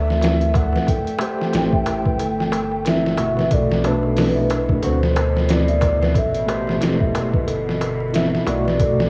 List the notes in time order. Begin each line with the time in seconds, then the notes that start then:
Already playing: D2 A3 A4 E5
0.08 snare, darbuka tek
0.21 E4, snare, closed hi-hat, darbuka tek
0.40 E5, closed hi-hat, darbuka tek
0.54 F#5, kick, closed hi-hat, darbuka tek
0.73 B4, snare, darbuka tek
0.87 A4 G5, kick, closed hi-hat, darbuka tek
1.05 closed hi-hat, darbuka tek
1.19 A3 G4, closed hi-hat, darbuka tek
1.23 C5
1.39 snare, darbuka tek
1.53 A1 E4, snare, closed hi-hat, darbuka tek
1.73 E5, kick, darbuka tek
1.86 closed hi-hat, darbuka tek
2.05 B4, kick, darbuka tek
2.19 G1 A4, closed hi-hat, darbuka tek
2.38 snare, darbuka tek
2.52 closed hi-hat, darbuka tek
2.71 darbuka tek
2.85 E4 E5, snare, closed hi-hat, darbuka tek
3.04 E5, snare, darbuka tek
3.17 G1 B2 A3 F#4, closed hi-hat, darbuka tek
3.37 B4, snare, darbuka tek
3.51 B1 B2 A4 D5, kick, closed hi-hat, darbuka tek
3.70 snare, darbuka tek
3.83 B2 A3 D4 B4, closed hi-hat, darbuka tek
4.03 darbuka tek
4.16 E4, snare, open hi-hat, darbuka tek
4.35 E5, darbuka tek
4.50 closed hi-hat, darbuka tek
4.69 B4, kick, darbuka tek
4.82 D2 D3 C4 F#4 A4 C5, closed hi-hat, darbuka tek
5.01 snare, darbuka tek
5.16 closed hi-hat, darbuka tek
5.36 snare, darbuka tek
5.49 E4 D5, snare, closed hi-hat, darbuka tek
5.68 E5, closed hi-hat, darbuka tek
5.81 kick, closed hi-hat, darbuka tek
6.01 B4, snare, darbuka tek
6.15 A1 A4 E5, kick, closed hi-hat, darbuka tek
6.34 closed hi-hat, darbuka tek
6.47 A3 G4 C5, closed hi-hat, darbuka tek
6.67 snare, darbuka tek
6.80 E1 E4, snare, closed hi-hat, darbuka tek
7.00 E5, kick, darbuka tek
7.15 closed hi-hat, darbuka tek
7.33 B4, kick, darbuka tek
7.46 G1 A4, closed hi-hat, darbuka tek
7.67 snare, darbuka tek
7.81 closed hi-hat, darbuka tek
8.00 darbuka tek
8.12 E4 E5, snare, closed hi-hat, darbuka tek
8.31 E5, snare, darbuka tek
8.46 B1 B2 A3 F#4 D5, closed hi-hat, darbuka tek
8.64 B4, snare, darbuka tek
8.78 A4, kick, closed hi-hat, darbuka tek
8.99 snare, darbuka tek